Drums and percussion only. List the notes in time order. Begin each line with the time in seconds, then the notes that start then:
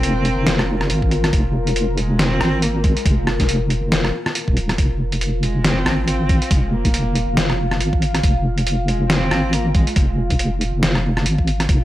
0.03 closed hi-hat
0.25 closed hi-hat
0.47 snare, closed hi-hat
0.59 cross-stick
0.81 cross-stick
0.90 closed hi-hat
1.02 kick
1.11 closed hi-hat
1.24 cross-stick, closed hi-hat
1.33 kick, closed hi-hat
1.67 closed hi-hat
1.76 closed hi-hat
1.98 closed hi-hat
2.19 snare, closed hi-hat
2.41 cross-stick
2.62 closed hi-hat
2.84 kick, closed hi-hat
2.97 closed hi-hat
3.06 kick, closed hi-hat
3.27 cross-stick
3.40 kick, snare, closed hi-hat
3.49 closed hi-hat
3.70 closed hi-hat
3.92 snare, closed hi-hat
4.05 cross-stick
4.26 cross-stick
4.35 closed hi-hat
4.48 kick
4.57 closed hi-hat
4.69 cross-stick, closed hi-hat
4.78 kick, closed hi-hat
5.12 closed hi-hat
5.21 closed hi-hat
5.43 closed hi-hat
5.64 snare, closed hi-hat
5.86 cross-stick
6.08 closed hi-hat
6.29 kick, closed hi-hat
6.42 closed hi-hat
6.51 kick, closed hi-hat
6.85 kick, closed hi-hat
6.94 closed hi-hat
7.15 closed hi-hat
7.37 snare, closed hi-hat
7.50 cross-stick
7.71 cross-stick
7.81 closed hi-hat
7.93 kick
8.02 closed hi-hat
8.15 cross-stick, closed hi-hat
8.23 kick, closed hi-hat
8.58 closed hi-hat
8.67 closed hi-hat
8.88 closed hi-hat
9.10 snare, closed hi-hat
9.31 cross-stick
9.53 closed hi-hat
9.75 kick, closed hi-hat
9.87 closed hi-hat
9.96 kick, closed hi-hat
10.30 kick, closed hi-hat
10.39 closed hi-hat
10.61 closed hi-hat
10.83 snare, closed hi-hat
10.95 cross-stick
11.17 cross-stick
11.26 closed hi-hat
11.38 kick
11.47 closed hi-hat
11.60 cross-stick, closed hi-hat
11.69 kick, closed hi-hat